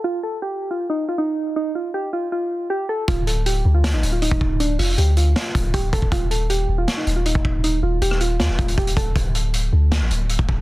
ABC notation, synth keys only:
X:1
M:4/4
L:1/16
Q:1/4=158
K:Dphr
V:1 name="Synth keys"
F2 A2 G3 F2 E2 F E4 | E2 F2 G2 F2 F4 G2 A2 | F2 A2 G3 F2 E2 F E4 | D2 F2 G2 F2 F4 G2 A2 |
F2 A2 G3 F2 E2 F E4 | E2 F2 G2 F2 F4 G2 A2 | z16 |]